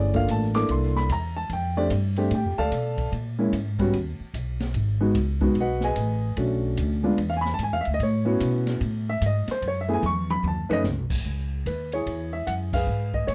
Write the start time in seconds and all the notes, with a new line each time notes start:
Already playing: G1 A3 C#4 E4 G#4 D5
0.14 A#3 D4 F4 A4 F5, kick, ride
0.28 A1 A5, kick, hi-hat pedal, ride
0.42 snare
0.54 A#3 D4 E4 A4 D6, snare, ride
0.69 C2 C6, kick, ride
0.83 snare
0.96 B5, snare
1.09 E2 A#5, kick, hi-hat pedal, ride
1.37 A5
1.49 F2 G5, kick, ride
1.77 A3 C4 D4 G4 D5
1.90 G2, kick, hi-hat pedal, ride
2.16 A3 C4 D4 G4, ride
2.31 A2 G4 G5, kick, ride
2.45 F2
2.58 D2 A4 D5 F5 A5
2.71 B2, kick, hi-hat pedal, ride
2.98 kick, ride
3.12 A#2, ride
3.39 G#3 A#3 C#4 E4
3.53 G#2, kick, hi-hat pedal, ride
3.79 G3 B3 C#4 F#4, kick, ride
3.93 D#2, kick, ride
4.19 muted upright bass stroke
4.34 B1, kick, hi-hat pedal, ride
4.60 snare, ride
4.74 G#1, kick, ride
5.01 G#3 B3 D#4 F#4
5.15 C#2, kick, hi-hat pedal, ride
5.41 G#3 B3 D#4 F#4, kick
5.55 B1, ride
5.60 F#4 B4 D#5 F#5
5.81 G#4 B4 G#5, snare
5.85 D#5
5.96 A1, kick, hi-hat pedal, ride
6.36 B1 A3 C#4 D4 F#4, kick, ride
6.77 D2, kick, hi-hat pedal, ride
7.03 G#3 B3 D4 F4
7.18 E2, kick, ride
7.30 F5, snare
7.37 G#5
7.41 B5, snare
7.54 A5
7.59 G#2, kick, hi-hat pedal, ride
7.63 G#5
7.72 E2 F5
7.81 E5
7.85 D2, ride
7.94 D#5
7.99 A2 C#5, kick, ride
8.25 B3 C#4 E4 F#4
8.40 B2, kick, hi-hat pedal, ride
8.67 snare, ride
8.81 A2, kick, ride
9.09 E5
9.21 G#2, kick, hi-hat pedal, ride
9.26 D#5
9.47 C5, muted upright bass stroke, snare, ride
9.62 F#2, kick, ride
9.68 C#5
9.81 E5
9.88 A3 B3 E4 G#4
9.93 G#5
10.03 E2 C#6, hi-hat pedal, high tom
10.30 B5, high tom
10.43 D#2, floor tom
10.47 A5
10.69 A3 C#4 D#4 B4 D#5, muted upright bass stroke, floor tom
10.84 C#2, snare, hi-hat pedal
10.98 B1
11.10 A1, kick, crash
11.25 C#2, kick
11.66 D#2 B4, kick, hi-hat pedal, ride
11.92 E4 G#4 C#5, ride
12.06 E2, kick, ride
12.33 E5
12.47 F#2 F#5, kick, hi-hat pedal, ride
12.73 G#4 B4 F5, kick, crash
12.87 G#2
13.13 D#5, kick
13.27 A2 C#5, kick, hi-hat pedal, ride